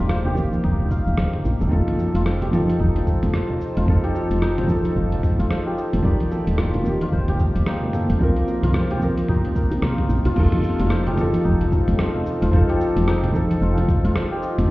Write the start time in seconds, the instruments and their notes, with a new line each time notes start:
Already playing: felt piano D#3 G4 D5, ambient pad D#3 A#3 F5 G5 D6, santur D#4 G4 A4 D#5
0.00 fm bass D#1, santur F4
0.09 santur C5, cross-stick, shaker
0.25 santur G4, high bongo, low conga
0.35 felt piano D#3, santur D#5, kick, high conga, shaker
0.39 felt piano G4
0.53 high conga, shaker
0.64 fm bass D#1, santur D#4, kick, mid tom, shaker
0.80 low conga
0.91 santur F5, kick, shaker
1.07 fm bass D#1, high conga, shaker
1.18 fm bass D#1, santur C5, cross-stick, shaker
1.33 mid tom
1.45 fm bass A#1, shaker
1.61 fm bass D#1, santur A4, high bongo, low conga, shaker
1.69 fm bass F1, felt piano F3 D#4 A4, ambient pad F4, santur F4, kick, shaker
1.88 ambient pad A5, closed hi-hat, mid tom, high conga
1.99 ambient pad C5, high bongo, shaker
2.13 fm bass F1, santur F4, ambient pad D#5, closed hi-hat, shaker
2.26 santur C5, cross-stick, shaker
2.41 santur G4, closed hi-hat, high bongo, low conga
2.51 felt piano F3 D#4 A4, santur D#5, mid tom, high conga, shaker
2.67 closed hi-hat, high conga, shaker
2.80 fm bass F1, santur D#4, kick, shaker
2.96 closed hi-hat, low conga
3.07 santur A4, kick, shaker
3.23 fm bass F1, closed hi-hat, mid tom, shaker
3.34 santur F4, cross-stick, shaker
3.49 high bongo, low conga
3.61 shaker
3.77 fm bass F1, santur F4, closed hi-hat, shaker
3.85 fm bass F1, felt piano F3 D#4, santur C5, kick, mid tom, shaker
3.90 felt piano A4
4.04 santur G4, closed hi-hat
4.15 santur D#5, high bongo, shaker
4.31 fm bass F1, closed hi-hat, shaker
4.42 santur D#4, cross-stick, shaker
4.58 closed hi-hat, mid tom, high bongo, low conga
4.67 felt piano F3 D#4 A4, santur A4, kick, high conga, shaker
4.85 closed hi-hat, high conga, shaker
4.96 fm bass F1, santur F4, kick, shaker
5.12 closed hi-hat, low conga
5.23 kick, mid tom, shaker
5.39 fm bass F1, santur F4, closed hi-hat, high conga, shaker
5.50 santur C5, cross-stick, shaker
5.67 santur G4
5.78 santur D#5, shaker
5.93 fm bass F1, closed hi-hat, mid tom, high bongo, shaker
6.02 fm bass D#1, felt piano D#3 G4 D5, ambient pad D#3, santur D#4, kick, shaker
6.17 ambient pad A#3, closed hi-hat, high conga
6.31 santur A4, high bongo, shaker
6.47 fm bass D#1, closed hi-hat, shaker
6.58 santur F4, cross-stick, mid tom, shaker
6.70 ambient pad D6, closed hi-hat
6.75 high bongo, low conga
6.83 felt piano D#3, ambient pad F5, high conga, shaker
6.88 felt piano G4
7.01 santur F4, closed hi-hat, high conga, shaker
7.12 fm bass D#1, santur C5, kick, shaker
7.28 santur G4, closed hi-hat, mid tom, low conga
7.39 santur D#5, kick, shaker
7.55 fm bass D#1, closed hi-hat, shaker
7.66 santur D#4, cross-stick, shaker
7.82 high bongo, low conga
7.93 santur A4, mid tom, shaker
8.09 fm bass D#1, closed hi-hat, shaker
8.19 fm bass C2, felt piano F3 C4, ambient pad C4, santur F4, kick, shaker
8.23 felt piano A#4
8.36 closed hi-hat
8.41 ambient pad G4
8.48 high bongo, shaker
8.63 fm bass C2, santur F4, closed hi-hat, mid tom, high conga, shaker
8.74 santur C5, cross-stick, high bongo, shaker
8.91 santur G4, closed hi-hat, high bongo, low conga
8.99 felt piano F3 C4, santur D#5, kick, high conga, shaker
9.03 felt piano A#4
9.17 closed hi-hat, high conga, shaker
9.28 fm bass C2, santur D#4, kick, mid tom, shaker
9.45 closed hi-hat, low conga
9.56 santur A#4, kick, shaker
9.71 fm bass C2, closed hi-hat, high bongo, high conga, shaker
9.82 fm bass C2, santur F4, cross-stick, shaker
9.98 mid tom
10.09 fm bass A#1, shaker
10.25 fm bass C2, santur F4, closed hi-hat, high bongo, shaker
10.36 fm bass F1, felt piano F3 D#4 A4, ambient pad F4, santur F4, kick, crash, shaker
10.41 ambient pad C5
10.52 closed hi-hat, mid tom, high conga
10.63 ambient pad A5, shaker
10.79 fm bass F1, santur F4, closed hi-hat, high bongo, shaker
10.90 santur C5, ambient pad D#5, cross-stick, shaker
11.07 santur G4, ambient pad G5, closed hi-hat, low conga
11.17 felt piano F3 D#4, santur D#5, mid tom, high bongo, high conga, shaker
11.21 felt piano A4
11.33 closed hi-hat, high conga, shaker
11.45 fm bass F1, santur D#4, kick, shaker
11.61 closed hi-hat, low conga
11.72 santur A4, kick, high bongo, shaker
11.88 fm bass F1, closed hi-hat, mid tom, shaker
11.99 santur F4, cross-stick, shaker
12.15 low conga
12.26 shaker
12.42 fm bass F1, santur F4, closed hi-hat, shaker
12.51 fm bass F1, felt piano F3 D#4, santur C5, kick, mid tom, shaker
12.55 felt piano A4
12.69 santur G4, closed hi-hat
12.80 santur D#5, shaker
12.96 fm bass F1, closed hi-hat, high bongo, high conga, shaker
13.07 santur D#4, cross-stick, shaker
13.23 closed hi-hat, mid tom, low conga
13.32 felt piano F3 D#4 A4, santur A4, kick, high conga, shaker
13.51 closed hi-hat, high conga, shaker
13.61 fm bass F1, santur F4, shaker
13.77 closed hi-hat, low conga
13.88 kick, mid tom, shaker
14.04 fm bass F1, santur F4, closed hi-hat, shaker
14.15 santur C5, cross-stick, shaker
14.32 santur G4
14.43 santur D#5, shaker
14.58 fm bass F1, closed hi-hat, mid tom, shaker